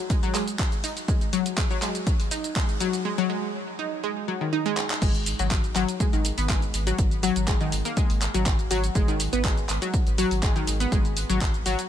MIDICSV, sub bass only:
0, 0, Header, 1, 2, 480
1, 0, Start_track
1, 0, Key_signature, 5, "minor"
1, 0, Tempo, 491803
1, 1058, Time_signature, 4, 2, 24, 8
1, 11603, End_track
2, 0, Start_track
2, 0, Title_t, "Sub bass"
2, 0, Program_c, 0, 38
2, 4898, Note_on_c, 0, 32, 97
2, 5212, Note_off_c, 0, 32, 0
2, 5264, Note_on_c, 0, 32, 98
2, 5571, Note_off_c, 0, 32, 0
2, 5618, Note_on_c, 0, 32, 95
2, 5712, Note_off_c, 0, 32, 0
2, 5984, Note_on_c, 0, 32, 91
2, 6159, Note_off_c, 0, 32, 0
2, 6224, Note_on_c, 0, 32, 88
2, 6531, Note_off_c, 0, 32, 0
2, 6578, Note_on_c, 0, 32, 105
2, 6760, Note_off_c, 0, 32, 0
2, 6818, Note_on_c, 0, 32, 99
2, 7132, Note_off_c, 0, 32, 0
2, 7184, Note_on_c, 0, 32, 96
2, 7491, Note_off_c, 0, 32, 0
2, 7538, Note_on_c, 0, 32, 94
2, 7632, Note_off_c, 0, 32, 0
2, 7904, Note_on_c, 0, 32, 94
2, 8079, Note_off_c, 0, 32, 0
2, 8144, Note_on_c, 0, 32, 89
2, 8451, Note_off_c, 0, 32, 0
2, 8498, Note_on_c, 0, 32, 105
2, 8679, Note_off_c, 0, 32, 0
2, 8738, Note_on_c, 0, 32, 100
2, 9052, Note_off_c, 0, 32, 0
2, 9104, Note_on_c, 0, 32, 102
2, 9411, Note_off_c, 0, 32, 0
2, 9458, Note_on_c, 0, 32, 92
2, 9552, Note_off_c, 0, 32, 0
2, 9824, Note_on_c, 0, 32, 87
2, 9999, Note_off_c, 0, 32, 0
2, 10064, Note_on_c, 0, 32, 86
2, 10371, Note_off_c, 0, 32, 0
2, 10418, Note_on_c, 0, 32, 98
2, 10599, Note_off_c, 0, 32, 0
2, 10658, Note_on_c, 0, 32, 103
2, 10972, Note_off_c, 0, 32, 0
2, 11024, Note_on_c, 0, 32, 93
2, 11331, Note_off_c, 0, 32, 0
2, 11378, Note_on_c, 0, 32, 96
2, 11472, Note_off_c, 0, 32, 0
2, 11603, End_track
0, 0, End_of_file